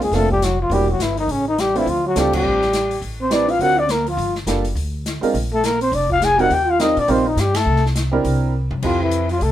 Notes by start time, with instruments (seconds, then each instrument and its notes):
0.01 upright bass F2, trombone G#3, trumpet G#4, open hi-hat
0.11 upright bass F1, upright piano A3 A#3 C4 D4 F4, trombone A3, trumpet A4, snare, open hi-hat
0.30 trombone G3, trumpet G4, kick
0.42 trombone F#3, trumpet F#4, snare, closed hi-hat
0.60 trombone F3, trumpet F4
0.70 upright bass E1, upright piano G3 A#3 D4 E4 F#4, trombone G3, trumpet G4, open hi-hat
0.90 trombone F#3, trumpet F#4
0.99 upright bass G1, trombone E3, trumpet E4, snare, closed hi-hat
1.17 trombone D#3, trumpet D#4, open hi-hat
1.28 upright bass A1, trombone C#3, trumpet C#4, open hi-hat
1.48 trombone D#3, trumpet D#4
1.58 trombone G3, trumpet G4, snare, closed hi-hat
1.74 trombone E3, upright piano A3 C4 D4 F4 C5, open hi-hat
1.78 trumpet E4
1.86 upright bass D2, trombone F3, trumpet F4, open hi-hat
2.06 trombone F#3, trumpet F#4
2.15 upright bass C#2, trombone G3, upright piano A3 C4 D4 F4 A4, trumpet G4, snare, closed hi-hat
2.33 trombone G3, trumpet G4, kick, crash
2.44 upright bass A1
2.62 snare
2.73 snare, closed hi-hat
2.91 open hi-hat
3.02 upright bass A1, open hi-hat
3.21 trombone C4, trumpet C5
3.30 upright piano G3 C4 D4 E4 B4, trombone D4, trumpet D5, snare, closed hi-hat
3.48 trombone F4, trumpet F5, open hi-hat
3.59 upright bass D2, upright piano F#3 C4 D4 F4 A#4, trombone F#4, trumpet F#5, open hi-hat
3.78 trombone D4, trumpet D5
3.89 trombone A#3, trumpet A#4, snare, closed hi-hat
4.07 trombone F3, trumpet F4, open hi-hat
4.17 upright bass G1, open hi-hat
4.35 snare
4.46 upright bass F#1, upright piano G3 A#3 D4 F4 A4, snare, closed hi-hat
4.65 open hi-hat
4.75 upright bass D2, open hi-hat
5.06 snare, closed hi-hat
5.21 upright piano G#3 C4 D4 F4 A#4, muted upright bass stroke, open hi-hat
5.34 upright bass A#1, open hi-hat
5.53 trombone A3, trumpet A4
5.64 trombone A#3, trumpet A#4, snare, closed hi-hat
5.81 trombone C4, trumpet C5, open hi-hat
5.92 upright bass F1, trombone D4, trumpet D5, open hi-hat
6.10 trombone F4, trumpet F5, kick
6.22 trombone G#4, trumpet G#5, snare, closed hi-hat
6.38 upright piano G3 C4 D#4 F4 A#4, trombone F#4, trumpet F#5, open hi-hat
6.50 upright bass D#2, trombone G4, trumpet G5, open hi-hat
6.67 trombone F4, trumpet F5
6.79 upright piano G3 C4 D#4 F4 A#4, trombone D#4, trumpet D#5, snare, closed hi-hat
6.97 upright bass A#2, trombone D4, trumpet D5, open hi-hat
7.08 upright bass A#1, upright piano G3 C4 D#4 F4 A#4, trombone C4, trumpet C5, open hi-hat
7.27 trombone D#3, trumpet D#4
7.36 upright bass G2, trombone G3, trumpet G4, snare, closed hi-hat
7.55 trombone A3, trumpet A4, snare, ride
7.65 upright bass C2
7.76 snare
7.86 snare
7.96 snare, closed hi-hat
8.11 upright piano G3 C4 D4 E4 A#4
8.24 upright bass C2, open hi-hat
8.70 upright bass F#2, mid tom
8.82 upright bass F2, trombone F3, upright piano C4 E4 G4 A4, trumpet F4, kick, crash
9.01 trombone E3, trumpet E4
9.11 closed hi-hat
9.29 trombone F3, trumpet F4, open hi-hat
9.41 upright bass C2, trombone A3, trumpet A4, open hi-hat